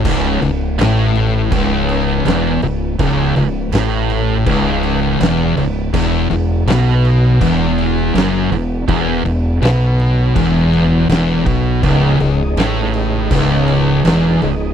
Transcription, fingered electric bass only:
X:1
M:4/4
L:1/8
Q:1/4=81
K:C#m
V:1 name="Fingered electric bass" clef=bass
C,,, C,,, A,,,2 C,,,2 E,,, C,,, | C,,, C,,, A,,,2 C,,,2 E,,, C,,, | E,,, E,,, B,,,2 E,,,2 F,,, E,,, | E,,, E,,, B,,,2 E,,,2 E,,, B,,, |
C,,, C,,, A,,,2 C,,,2 E,,, C,,, |]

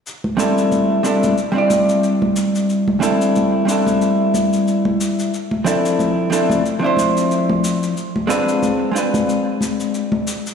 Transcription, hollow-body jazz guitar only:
X:1
M:4/4
L:1/16
Q:"Swing 16ths" 1/4=91
K:C
V:1 name="Hollow-body jazz guitar"
z2 [G,CDEA]4 [G,CDEA]2 z [G,CDEd]6- [G,CDEd]- | [G,CDEd]2 [G,CDEA]4 [G,CDEA]8- [G,CDEA]2 | z2 [F,CDEA]4 [F,CDEA]2 z [F,CDEc]6- [F,CDEc] | z2 [^G,CD^EB]4 [G,CDEB]8- [G,CDEB]2 |]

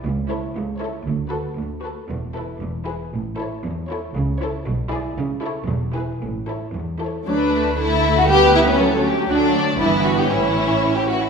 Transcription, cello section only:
X:1
M:2/4
L:1/8
Q:1/4=117
K:A
V:1 name="Cello section" clef=bass
C,,2 C,,2 | D,,2 D,,2 | E,,2 E,,2 | A,,2 E,,2 |
C,2 B,,2 | C,2 E,,2 | A,,2 E,,2 | [K:D] D,,4- |
D,,4 | D,,2 G,,2 | A,,3 z |]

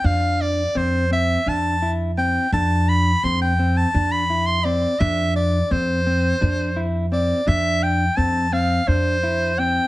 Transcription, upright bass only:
X:1
M:7/8
L:1/8
Q:1/4=85
K:Flyd
V:1 name="Upright bass" clef=bass
F,,2 F,,2 F,,3 | F,,2 F,,2 F,,3 | F,,2 F,,2 F,,3 | F,,2 F,,2 F,,3 |]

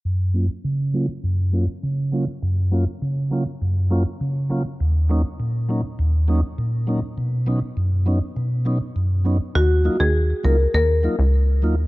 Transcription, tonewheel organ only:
X:1
M:4/4
L:1/8
Q:1/4=101
K:F#
V:1 name="Tonewheel organ"
z [F,A,CE] z [F,A,CE] z [F,A,CE] z [F,A,CE] | z [F,A,CE] z [F,A,CE] z [F,A,CE] z [F,A,CE] | z [F,A,CD] z [F,A,CD] z [F,A,CD] z [F,A,CD] | z [F,B,CD] z [F,B,CD] z [F,B,CD] z [F,B,CD] |
z [F,A,DE] z [F,A,DE] z [F,A,DE] z [F,A,DE] |]
V:2 name="Tonewheel organ" clef=bass
F,,2 C,2 F,,2 C,2 | F,,2 C,2 F,,2 C,2 | D,,2 A,,2 D,,2 A,,2 | B,,2 F,,2 B,,2 F,,2 |
z8 |]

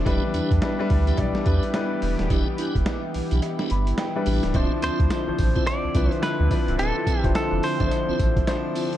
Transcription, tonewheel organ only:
X:1
M:4/4
L:1/16
Q:"Swing 16ths" 1/4=107
K:Ephr
V:1 name="Tonewheel organ"
[DEG] z [DEG] z4 [DEG] z2 [DEG] z4 z | [DEG] z [DEG] z4 [DEG] z [DEG] z4 [DEG] z | [CEF] z [CEF] z4 [CEF] z2 [CEF] z4 z | [CEF] z [CEF] z4 [CEF] z [CEF] z4 [CEF] z |]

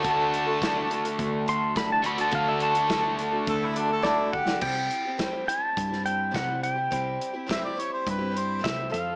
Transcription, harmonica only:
X:1
M:4/4
L:1/16
Q:1/4=105
K:Clyd
V:1 name="Harmonica"
a8 z8 | z8 A E D A E2 G2 | z16 | z4 e d ^c =c B2 c2 z4 |]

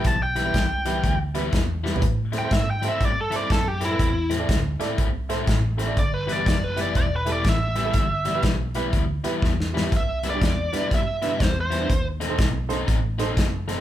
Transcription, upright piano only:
X:1
M:4/4
L:1/16
Q:"Swing" 1/4=122
K:Em
V:1 name="Upright piano"
z2 [GB] [EGB] z2 [EGB] z3 [EGB] z3 [GB] [EGB] | z2 [Ac] [EAc] z2 [EAc] z3 [EAc] z3 [Ac] [EAB] | z2 [Ac] [EAd] z2 [EAd] z3 [EAc] z3 [Ac] [EAd] | z2 [GB] [EGB] z2 [EGB] z3 [EGA] z3 [GB] [EGA] |
z2 [Gd] [EGB] z2 [EGB] z3 [EGB] z3 [GB] [EGB] | z2 [EB] [DEG] z2 [DEB] z3 [DEB] z3 [EB] [DEB] | z2 [Ac] [^DAc] z2 [DAc] z3 [DAc] z3 [Ac] z |]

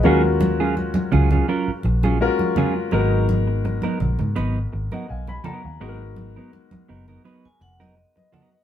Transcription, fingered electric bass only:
X:1
M:4/4
L:1/16
Q:"Swing 16ths" 1/4=83
K:G#dor
V:1 name="Fingered electric bass" clef=bass
D,,6 C,,2 z2 A,,,3 z3 | G,,,4- G,,, z A,,, G,, G,,,2 G,,, z B,,,2 z D,, | G,,,4 z2 F,,,2 z2 E,,,3 z3 |]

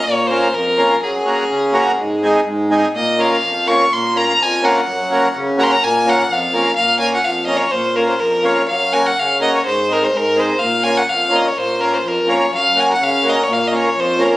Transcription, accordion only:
X:1
M:2/4
L:1/8
Q:"Swing 16ths" 1/4=125
K:Bbm
V:1 name="Accordion"
z [B,DFB] z [B,DFB] | z [B,DGB] z [B,DGB] | z [A,CEA] z [A,CEA] | z [B,DFB] z [B,DFB] |
z [B,DFB] z [B,DFB] | z [B,DGB] z [B,DGB] | z [B,DFB] z [B,DFB] | z [B,DFB] z [B,DFB] |
z [B,DFB] z [B,DFB] | z [B,DGB] z [B,DGB] | z [A,CEA] z [A,CEA] | z [B,DFB] z [B,DFB] |
z [B,DFB] z [B,DFB] | z [B,DGB] z [B,DGB] | z [B,DFB] z [B,DFB] |]
V:2 name="Accordion" clef=bass
B,,2 F,,2 | G,,2 D,2 | A,,2 A,,2 | B,,2 F,,2 |
B,,2 F,,2 | G,,2 D,2 | B,,2 F,,2 | B,,2 F,,2 |
B,,2 F,,2 | G,,2 D,2 | A,,2 A,,2 | B,,2 F,,2 |
B,,2 F,,2 | G,,2 D,2 | B,,2 F,,2 |]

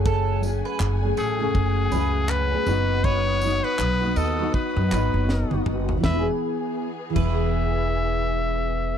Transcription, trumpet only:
X:1
M:4/4
L:1/16
Q:"Swing 16ths" 1/4=80
K:E
V:1 name="Trumpet"
z6 G6 B4 | c3 B3 A2 B6 z2 | e z4 z e8- e2 |]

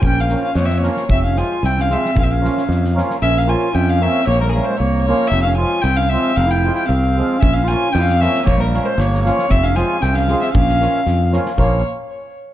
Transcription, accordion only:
X:1
M:2/4
L:1/8
Q:1/4=114
K:none
V:1 name="Accordion"
z [F,_B,_DF] z [F,B,DF] | z [F,_A,CF] z [F,A,CF] | z [F,_B,_DF] z [F,B,DF] | z [F,_B,_DF] z [F,B,DF] |
z [F,_B,_DF] z [F,B,DF] | z [F,_A,CF] z [F,A,CF] | z [F,_A,CF] z [F,A,CF] | z [F,_B,_DF] z [F,B,DF] |
z [F,_B,_DF] z [F,B,DF] | z [F,_A,CF] z [F,A,CF] | z [F,_B,_DF] z [F,B,DF] | [F,_B,_DF] z3 |]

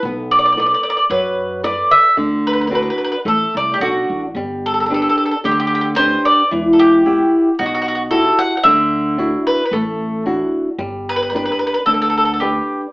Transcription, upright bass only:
X:1
M:4/4
L:1/8
Q:"Swing" 1/4=111
K:G
V:1 name="Upright bass" clef=bass
B,,,4 F,,4 | D,,4 A,,, C,, B,,, A,,, | G,,,4 D,,4 | E,,,4 B,,,4 |
D,,4 A,,,4 | G,,,4 D,,4 |]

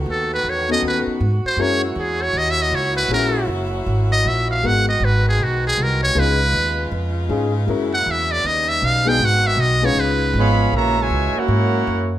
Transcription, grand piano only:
X:1
M:4/4
L:1/8
Q:"Swing" 1/4=157
K:F#mix
V:1 name="Grand piano"
z3 [B,CDF=A]3 z2 | [G,CEFA] z6 z | [G,CEFA] z6 z | [G,B,DFA] z6 z |
[G,CD^EB] z4 z [G,CDEG] z | [G,CEFA] z6 [G,B,DFG] | z3 [G,CD^EB]3 z2 | [K:F#] z8 |]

